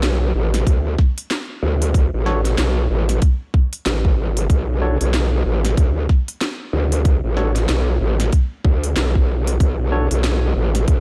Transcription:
Already playing: wobble bass B1
0.03 snare, closed hi-hat
0.35 wobble bass A1
0.54 snare, closed hi-hat
0.67 wobble bass D2, kick, closed hi-hat
0.98 kick, snare
1.18 closed hi-hat
1.31 snare, closed hi-hat
1.63 wobble bass D2
1.82 closed hi-hat
1.94 kick, closed hi-hat
2.14 wobble bass A1
2.26 tine electric piano D4 F#4 A4 C#5, snare
2.45 snare, closed hi-hat
2.58 wobble bass B1, snare, closed hi-hat
2.90 wobble bass A1
3.09 snare, closed hi-hat
3.22 kick, closed hi-hat
3.54 kick
3.73 closed hi-hat
3.86 wobble bass A1, snare, closed hi-hat
4.05 kick
4.30 wobble bass G#1
4.37 closed hi-hat
4.50 wobble bass B1, kick, closed hi-hat
4.82 tine electric piano D4 F#4 A4 C#5
5.01 wobble bass B1, closed hi-hat
5.14 snare, closed hi-hat
5.45 wobble bass A1
5.65 snare, closed hi-hat
5.77 wobble bass D2, kick, closed hi-hat
6.09 kick, snare
6.28 closed hi-hat
6.41 snare, closed hi-hat
6.73 wobble bass D2
6.92 closed hi-hat
7.05 kick, closed hi-hat
7.24 wobble bass A1
7.37 tine electric piano D4 F#4 A4 C#5, snare
7.56 snare, closed hi-hat
7.69 wobble bass B1, snare, closed hi-hat
8.01 wobble bass A1
8.20 snare, closed hi-hat
8.33 kick, closed hi-hat
8.65 wobble bass D2, kick
8.84 closed hi-hat
8.96 wobble bass B1, snare, closed hi-hat
9.15 kick
9.47 closed hi-hat
9.60 wobble bass B1, kick, closed hi-hat
9.92 tine electric piano D4 F#4 A4 C#5
10.11 wobble bass B1, closed hi-hat
10.24 snare, closed hi-hat
10.56 wobble bass A1
10.75 snare, closed hi-hat
10.88 wobble bass D2, kick, closed hi-hat

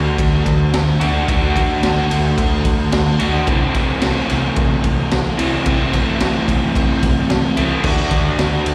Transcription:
Already playing: overdriven electric guitar D3 A3 D4 F#4
0.18 picked electric bass D2, kick, ride
0.46 picked electric bass D2, kick, ride
0.73 picked electric bass D2, snare, ride
1.00 picked electric bass D2, overdriven electric guitar D3 A3 D4 F#4, ride
1.27 picked electric bass D2, overdriven electric guitar D3 A3 D4 F#4, kick, ride
1.56 kick, ride
1.83 picked electric bass D2, snare, ride
2.11 picked electric bass D2, ride
2.38 picked electric bass D2, kick, ride
2.65 picked electric bass D2, kick, ride
2.92 picked electric bass D2, snare, ride
3.19 picked electric bass D2, overdriven electric guitar D3 A3 D4 F#4, ride
3.46 picked electric bass C2, overdriven electric guitar C3 E3 A3 C4 E4, kick, ride
3.74 picked electric bass C2, kick, ride
4.02 picked electric bass C2, snare, ride
4.30 picked electric bass C2, ride
4.56 picked electric bass C2, kick, ride
4.84 picked electric bass C2, kick, ride
5.11 picked electric bass C2, snare, ride
5.38 picked electric bass C2, overdriven electric guitar C3 E3 A3 C4 E4, ride
5.66 picked electric bass C2, overdriven electric guitar C3 E3 A3, kick, ride
5.70 overdriven electric guitar C4 E4
5.93 kick, ride
6.20 picked electric bass C2, snare, ride
6.48 picked electric bass C2, kick, ride
6.76 picked electric bass C2, kick, ride
7.03 picked electric bass C2, kick, ride
7.30 picked electric bass C2, snare, ride
7.57 picked electric bass C2, overdriven electric guitar C3 E3 A3 C4 E4, ride
7.83 picked electric bass D2, overdriven electric guitar D3 A3 D4 F#4, kick, crash
8.11 picked electric bass D2, kick, ride
8.39 picked electric bass D2, snare, ride
8.66 picked electric bass D2, ride

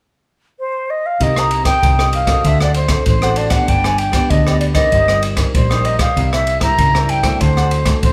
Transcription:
0.59 flute C5
0.90 flute D#5
1.06 flute F5
1.20 fingered electric bass C2, nylon-string guitar C3 A#3 D#4 G4, cavaquinho D#4 A#4 C5 D#5, flute D#5, kick, ride
1.35 cavaquinho A#4 C5 D#5, flute A#5, cross-stick
1.50 muted cavaquinho stroke, ride
1.64 nylon-string guitar A#3 D#4 G4, cavaquinho A#4 C5 D#5, flute G5, kick, cross-stick, ride
1.82 fingered electric bass C2, nylon-string guitar G2, cavaquinho D#4 A#4 C5 D#5, kick, ride
1.98 nylon-string guitar A#3 D#4 G4, cavaquinho A#4 C5 D#5, cross-stick
2.13 flute F5, ride
2.27 nylon-string guitar C4 F#4 A4, cavaquinho A#4 C5 D#5, kick, cross-stick, ride
2.44 fingered electric bass D2, nylon-string guitar D3, cavaquinho D4 C5 D5 F#5, flute E5, kick, ride
2.61 cavaquinho C5 D5 F#5, flute D5, cross-stick
2.74 flute C5, muted cavaquinho stroke, ride
2.88 nylon-string guitar C4 F#4 A4, kick, cross-stick, ride
3.06 fingered electric bass A1, nylon-string guitar A2, flute C5, kick, ride
3.22 nylon-string guitar C4 F#4 A4, cavaquinho C5 D5 F#5, cross-stick
3.36 cavaquinho D4 C5 D5 F#5, flute D5, ride
3.50 nylon-string guitar B3 D4 G4, cavaquinho C5 D5 F#5, flute F#5, kick, cross-stick, ride
3.68 fingered electric bass G1, nylon-string guitar G3, cavaquinho D4 G4 B4 D5, flute G5, kick, ride
3.84 cavaquinho G4 B4 D5, flute G#5, cross-stick
3.98 flute G5, muted cavaquinho stroke, ride
4.12 nylon-string guitar B3 D4 G4, cavaquinho G4 B4 D5, kick, cross-stick, ride
4.30 fingered electric bass D2, nylon-string guitar D3, cavaquinho D4 G4 B4 D5, flute D#5, kick, ride
4.47 nylon-string guitar B3 D4 G4, cavaquinho G4 B4 D5, cross-stick
4.60 flute D5, ride
4.74 nylon-string guitar C4 D#4 A#4, cavaquinho G4 B4 D5, flute D#5, kick, cross-stick, ride
4.92 fingered electric bass G1, nylon-string guitar G3, cavaquinho D#4 G4 C5 D#5, kick, ride
5.08 cavaquinho G4 C5 D#5, cross-stick
5.22 muted cavaquinho stroke, ride
5.37 nylon-string guitar C4 D#4 A#4, kick, cross-stick, ride
5.53 fingered electric bass A#1, nylon-string guitar G3, flute C5, kick, ride
5.70 nylon-string guitar C4 D#4 A#4, cavaquinho G4 C5 D#5, cross-stick
5.84 cavaquinho D#4 G4 C5 D#5, flute D#5, ride
5.99 nylon-string guitar G3 A#3, cavaquinho G4 C5 D#5, flute F5, kick, cross-stick, ride
6.17 fingered electric bass C2, nylon-string guitar C3, cavaquinho E4 A#4 C5 E5, kick, ride
6.32 cavaquinho A#4 C5 E5, flute E5, cross-stick
6.47 muted cavaquinho stroke, ride
6.60 nylon-string guitar G3 A#3 E4, cavaquinho A#4 C5 E5, flute A#5, kick, cross-stick, ride
6.78 fingered electric bass C#2, nylon-string guitar G2, cavaquinho E4 A#4 C5 E5, kick, ride
6.94 nylon-string guitar G3 A#3 E4, cavaquinho A#4 C5 E5, cross-stick
7.09 flute G5, ride
7.23 nylon-string guitar A3 C4 F#4, cavaquinho A#4 C5 E5, kick, cross-stick, ride
7.40 fingered electric bass D2, nylon-string guitar D3, cavaquinho D4 C5 D5 F#5, flute C5, kick, ride
7.57 cavaquinho C5 D5 F#5, cross-stick
7.71 muted cavaquinho stroke, ride
7.86 nylon-string guitar A3 C4 F#4, kick, cross-stick, ride
8.02 fingered electric bass A1, nylon-string guitar A2, flute C5, kick, ride

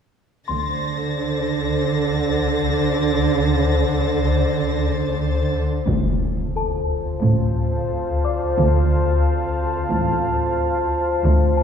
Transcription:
0.47 synth drone D2, double bass section D2, cello section D3, violin section C5 A6 A#6, celesta C6
5.87 synth drone D2, cello section D2, double bass section D2, ambient pad C5 F5 A5, impact
6.56 celesta A4 A5
7.22 double bass section A1, cello section A2
8.25 celesta D5 D6
8.56 double bass section D2, cello section D2
9.91 double bass section A1, cello section A2
11.24 cello section D2, double bass section D2, synth drone D2, ambient pad C5 D#5 G5
11.57 celesta A5

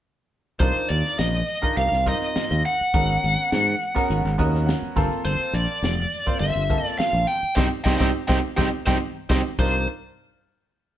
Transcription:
0.60 fingered electric bass C2, grand piano D4 D#4 F4 A#4, lead electric guitar C5, kick, closed hi-hat
0.76 muted fingered electric bass stroke, closed hi-hat
0.89 fingered electric bass D#2, lead electric guitar D5, closed hi-hat
1.05 snare
1.19 fingered electric bass A#1, lead electric guitar D#5, snare, closed hi-hat
1.48 open hi-hat
1.62 grand piano D4 D#4 F4 A#4, kick, closed hi-hat
1.77 fingered electric bass C2, lead electric guitar F5, closed hi-hat
1.92 fingered electric bass C2, snare, closed hi-hat
2.06 grand piano C4 D#4 F4 A#4, lead electric guitar D#5, kick, closed hi-hat
2.22 snare, closed hi-hat
2.36 muted fingered electric bass stroke, snare, closed hi-hat
2.51 fingered electric bass D#2, closed hi-hat
2.65 lead electric guitar F#5, closed hi-hat
2.81 muted fingered electric bass stroke, closed hi-hat
2.94 fingered electric bass G#1, grand piano B3 C#4 F#4 A#4, kick, closed hi-hat
3.09 closed hi-hat
3.23 fingered electric bass G#1, closed hi-hat
3.38 closed hi-hat
3.52 fingered electric bass G#2, snare, closed hi-hat
3.68 closed hi-hat
3.81 closed hi-hat
3.95 grand piano B3 C#4 F#4 A#4, kick, snare, closed hi-hat
4.10 fingered electric bass G#1, closed hi-hat
4.25 fingered electric bass G#1, snare, closed hi-hat
4.38 fingered electric bass D#2, grand piano B3 C#4 F#4 A#4 D#5, kick, closed hi-hat
4.55 snare, closed hi-hat
4.66 grand piano F#5, snare, closed hi-hat
4.82 muted fingered electric bass stroke, closed hi-hat
4.96 fingered electric bass G1, grand piano A#3 C4 F4 A4 A#5, kick, snare, open hi-hat
5.12 closed hi-hat
5.25 fingered electric bass G1, lead electric guitar C5, closed hi-hat
5.41 closed hi-hat
5.53 fingered electric bass A#1, lead electric guitar D5, closed hi-hat
5.83 fingered electric bass F1, snare, closed hi-hat
6.12 open hi-hat
6.26 grand piano A#3 C4 F4 C5, kick, closed hi-hat
6.40 fingered electric bass G1, lead electric guitar E5, closed hi-hat
6.56 fingered electric bass G1, closed hi-hat
6.69 grand piano A#3 C4 F4 A4, kick, closed hi-hat
6.86 lead electric guitar D5, snare, closed hi-hat
6.99 lead electric guitar F5, muted fingered electric bass stroke, snare, closed hi-hat
7.13 fingered electric bass A#1, closed hi-hat
7.27 lead electric guitar G5, snare, closed hi-hat
7.43 muted fingered electric bass stroke, closed hi-hat
7.55 fingered electric bass C2, grand piano C4 D#4 G4, lead electric guitar C5 D#5 G5, kick, snare
7.84 fingered electric bass C2, grand piano C4 D#4 G4, lead electric guitar C5 D#5 G5, kick, snare
7.98 fingered electric bass C2, grand piano C4 D#4 G4, lead electric guitar C5 D#5 G5, kick, snare
8.28 fingered electric bass C2, grand piano C4 D#4 G4, lead electric guitar C5 D#5 G5, kick, snare
8.57 fingered electric bass C2, grand piano C4 D#4 G4, lead electric guitar C5 D#5 G5, kick, snare
8.86 fingered electric bass C2, grand piano C4 D#4 G4, lead electric guitar C5 D#5 G5, kick, snare
9.29 fingered electric bass C2, grand piano C4 D#4 G4, lead electric guitar C5 D#5 G5, kick, snare
9.59 fingered electric bass C2, grand piano D4 D#4 F4 A#4, lead electric guitar C5, kick, crash

